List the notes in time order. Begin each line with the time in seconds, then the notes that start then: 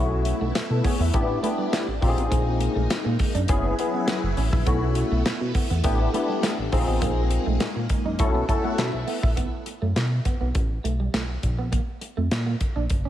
Already playing: B1 A3 B3 C#4 E4 F#4
0.25 muted clean electric guitar stroke, closed hi-hat
0.41 B1 A3
0.55 B2, muted clean electric guitar stroke, snare, clap, closed hi-hat
0.70 B2 E4 A4
0.84 B3 G#4 C#5, kick, open hi-hat
1.00 E2 B3 B4 E5
1.13 A1 G3 B3 D4 E4 G4, muted clean electric guitar stroke, kick, closed hi-hat
1.43 A3 B3 D4 E4 G4, closed hi-hat
1.58 G3
1.72 A3, snare, clap, closed hi-hat
1.88 A1, muted clean electric guitar stroke
2.01 A#1 G#3 A#3 C4 D#4 F4 G4, kick, open hi-hat
2.09 G#4
2.17 A1 B3, closed hi-hat
2.31 A#1 A#3, kick, closed hi-hat
2.60 muted clean electric guitar stroke, closed hi-hat
2.75 A#1 A3
2.90 A#2, snare, clap, closed hi-hat
3.05 A#2 A#3
3.19 muted clean electric guitar stroke, kick, open hi-hat
3.35 F#2 D4, closed hi-hat
3.48 F#1 F#3 B3 C#4 E4 G#4 B4, kick, closed hi-hat
3.64 C#4
3.78 B3 C#4 E4 G#4, muted clean electric guitar stroke, closed hi-hat
3.94 B3
4.08 muted clean electric guitar stroke, snare, clap, closed hi-hat
4.23 F#1
4.37 A1 C#4, open hi-hat
4.53 A#1 E4, kick
4.66 B1 A3 B3 C#4 E4 F#4, kick, closed hi-hat
4.95 muted clean electric guitar stroke, closed hi-hat
5.11 B1 A3
5.25 B2, muted clean electric guitar stroke, snare, clap, closed hi-hat
5.41 B2
5.55 B3, kick, open hi-hat
5.70 E2 B3, closed hi-hat
5.84 A1 G3 B3 D4 E4 G4, muted clean electric guitar stroke, kick, closed hi-hat
6.13 A3 B3 D4 E4 G4, closed hi-hat
6.29 G3
6.42 A3, snare, clap, closed hi-hat
6.58 A1, muted clean electric guitar stroke
6.72 A#1 G#3 A#3 C4 D#4 F4 G#4, kick, open hi-hat
6.88 A1 B3
7.02 A#1 A#3, kick, closed hi-hat
7.31 muted clean electric guitar stroke, closed hi-hat
7.46 A#1 A3
7.60 A#2, snare, clap, closed hi-hat
7.76 A#2 A#3
7.89 muted clean electric guitar stroke, kick, closed hi-hat
8.05 F#2 D#4
8.19 B1 A3 B3 C#4 E4 F#4 A4, kick, closed hi-hat
8.35 B3
8.48 C#4 E4 F#4 A4 A5, muted clean electric guitar stroke, kick, closed hi-hat
8.64 A3 F#5
8.78 B2 E5, muted clean electric guitar stroke, snare, clap, closed hi-hat
8.94 B1
9.07 B3, open hi-hat
9.23 A#1 E4, kick
9.36 B1 B3, kick, closed hi-hat
9.66 muted clean electric guitar stroke, closed hi-hat
9.82 F#2 A3
9.96 B2, muted clean electric guitar stroke, snare, clap, closed hi-hat
10.25 B3, kick, closed hi-hat
10.41 B1 B3
10.54 A1, muted clean electric guitar stroke, kick, closed hi-hat
10.84 B1 A3, closed hi-hat
11.00 G3
11.14 B1 A3, snare, clap, closed hi-hat
11.29 muted clean electric guitar stroke
11.43 A#1, kick, closed hi-hat
11.59 B3
11.72 A#3, kick, closed hi-hat
12.01 muted clean electric guitar stroke, closed hi-hat
12.17 F2 A3
12.31 A#2, snare, clap, closed hi-hat
12.46 A#3
12.60 muted clean electric guitar stroke, kick, closed hi-hat
12.76 A#1 D4
12.90 F#1, kick, closed hi-hat
13.05 C#4